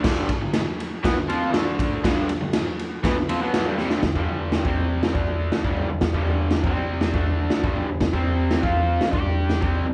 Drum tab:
CC |x---------------|----------------|----------------|----------------|
RD |--x-x-x-x-x-x-x-|x-x-x-x-x-x-x---|----------------|----------------|
SD |o---o---o---o---|o---o---o---o-oo|o---o---o---o---|o---o---o---o---|
FT |----------------|----------------|o-o-o-o-o-o-o-o-|o-o-o-o-o-o-o-o-|
BD |o-o-----o-----o-|o-------o-------|oo---o---o---o--|oo---o---o---o--|

CC |----------------|
RD |----------------|
SD |o---o---o---o---|
FT |o-o-o-o-o-o-o-o-|
BD |oo---o---o---o--|